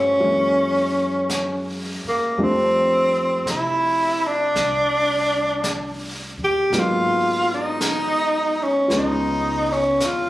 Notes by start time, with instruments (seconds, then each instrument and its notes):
Already playing: upright bass G2, grand piano D3 F3 G3 A3 A#3, tenor saxophone C#4
0.20 upright bass F#2, grand piano E3 F#3 G#3 A#3 C#4, brush sweep
1.30 brush sweep, snare, hi-hat pedal
2.04 muted upright bass stroke
2.09 tenor saxophone A#3
2.37 upright bass F2, grand piano F3 G3 A3 C4 D4, brush sweep
2.43 tenor saxophone C4
3.45 upright bass C3, brush sweep, snare, hi-hat pedal
3.50 tenor saxophone E4
4.27 tenor saxophone D4
4.55 upright bass C2, brush sweep, snare
5.64 brush sweep, snare, hi-hat pedal
6.38 upright bass D#2
6.44 tenor saxophone G4
6.70 upright bass G#1, grand piano F#3 G#3 A#3, brush sweep, snare
6.74 grand piano B3 D#4
6.79 tenor saxophone F4
7.54 tenor saxophone D#4
7.81 brush sweep, snare, hi-hat pedal
8.63 tenor saxophone C#4
8.88 upright bass C#2, grand piano G#3 B3 C#4 F4, brush sweep, snare
8.93 grand piano D#4
8.98 tenor saxophone D#4
9.72 tenor saxophone C#4
9.98 upright bass E2, snare, hi-hat pedal
10.05 tenor saxophone F4